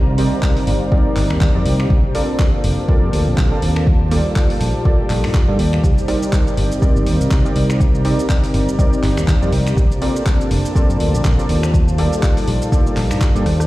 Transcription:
Already playing: C2 G3 C4 D#4 G4 A#4 C5 D5 F5 A#5
0.18 C4 D#4 G4 A#4 D5, open hi-hat
0.43 kick, clap
0.57 open hi-hat
0.67 G1, open hi-hat
0.92 C4 D#4 G4 A#4 D5, kick
1.16 G1, clap, open hi-hat
1.30 D#2, finger snap
1.41 kick, clap
1.55 F2 C4 D#4 G4 A#4 D5
1.66 C2, open hi-hat
1.80 finger snap
1.90 A#1 A#3 D4 F4 A5, kick
2.15 C4 F4 A4 A#4 D5, open hi-hat
2.20 A5
2.39 kick, clap
2.64 F1, open hi-hat
2.88 C4 F4 A4 A#4 D5, kick
3.03 F2
3.13 D2, open hi-hat
3.27 A#1
3.38 A#1, kick, clap
3.52 C4 F4 A4 A#4 D5
3.62 D#2, open hi-hat
3.76 finger snap
3.87 G3 D#4 D5, kick
4.11 A#3 F4 G4 A4 D5, open hi-hat
4.36 kick, clap
4.50 open hi-hat
4.61 A#1, open hi-hat
4.85 A#3 F4 G4 A4 D5, kick
5.10 A#1, clap, open hi-hat
5.24 G2, finger snap, open hi-hat
5.34 kick, clap
5.48 G2 A#3 F4 G4 A4 D5
5.59 D#2, open hi-hat
5.73 finger snap
5.84 C2 C4 A#4, kick, shaker
5.98 shaker
6.08 C4 D#4 G4 A#4 D5, open hi-hat
6.23 shaker
6.33 kick, clap, shaker
6.47 shaker
6.57 G1, open hi-hat
6.72 shaker
6.76 A#5
6.82 C4 D#4 G4 A#4 D5, kick, shaker
6.96 G1, shaker
7.06 D#2, open hi-hat
7.21 C2, shaker
7.31 C2, kick, clap, shaker
7.45 C4 D#4 G4 A#4 D5, shaker
7.56 C2, open hi-hat
7.70 finger snap, shaker
7.80 kick, shaker
7.95 shaker
8.05 C4 D#4 G4 A#4 D5, open hi-hat
8.19 shaker
8.30 kick, clap, shaker
8.44 open hi-hat, shaker
8.54 G1, open hi-hat
8.69 shaker
8.79 C4 D#4 G4 A#4 D5, kick, shaker
8.93 shaker
9.03 G1, clap, open hi-hat
9.17 D#2, finger snap, shaker
9.28 kick, clap, shaker
9.42 F2 C4 D#4 G4 A#4 D5, shaker
9.52 C2, open hi-hat
9.67 finger snap, shaker
9.77 A#1 A#3 D4 F4 A5, kick, shaker
9.92 shaker
9.97 A5
10.02 C4 F4 A4 A#4 D5, open hi-hat
10.15 C5, shaker
10.26 kick, clap, shaker
10.41 shaker
10.51 F1, open hi-hat
10.65 F5, shaker
10.75 C4 F4 A4 A#4 D5, kick, shaker
10.89 F2, shaker
11.00 D2, open hi-hat
11.14 A#1, shaker
11.25 kick, clap, shaker
11.39 C4 F4 A4 A#4 D5, shaker
11.49 D#2, open hi-hat
11.63 finger snap, shaker
11.74 G3 D#4 A4 D5, kick, shaker
11.88 shaker
11.98 A#3 F4 G4 A4 D5, open hi-hat
12.13 shaker
12.23 kick, clap, shaker
12.37 open hi-hat, shaker
12.48 A#1, open hi-hat
12.62 shaker
12.72 A#3 F4 G4 A4 D5, kick, shaker
12.87 shaker
12.97 A#1, clap, open hi-hat
13.11 G2, finger snap, open hi-hat, shaker
13.21 kick, clap, shaker
13.35 G2 A#3 F4 G4 A4 D5, shaker
13.46 D#2, cross-stick, open hi-hat
13.60 cross-stick, shaker

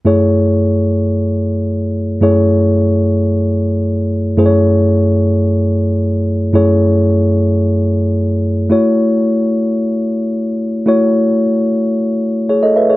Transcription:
0.05 F#2 A3 E4 G#4 C#5
2.21 F#2 A3 E4 G#4 C#5
4.37 F#2 A3 E4 G#4 C5
4.46 C#5
6.53 F#2 A3 E4 G#4 C#5
8.69 A3 E4 F#4 C#5
10.86 A3 E4 F#4 C#5
12.49 G#4 C#5
12.63 A4 D#5
12.76 B4 E5
12.90 G#4 C#5

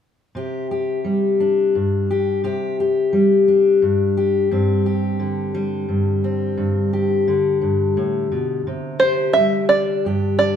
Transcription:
0.35 C3 G4
0.71 G4
1.04 G3
1.40 D4
1.75 G2
2.11 G4
2.44 C3 G4
2.80 G4
3.13 G3
3.48 D4
3.82 G2
4.17 G4
4.51 G2 C4
4.86 G4
5.20 D3
5.55 G3
5.89 G2
6.24 C4
6.58 G2
6.93 G4
7.28 D3
7.62 G2
7.97 A2
8.32 B2
8.67 C3
9.00 G4 C5
9.33 G3 E5
9.69 D4 D5
10.05 G2 G4
10.39 D4 D5

